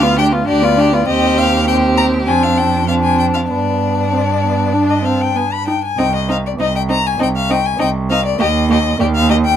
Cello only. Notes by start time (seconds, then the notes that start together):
Already playing: D2
0.49 D2
1.08 D#2
2.28 F2
3.49 G2
5.98 C2
6.59 C2
7.20 C2
7.80 C2
8.40 D#2
9.00 D#2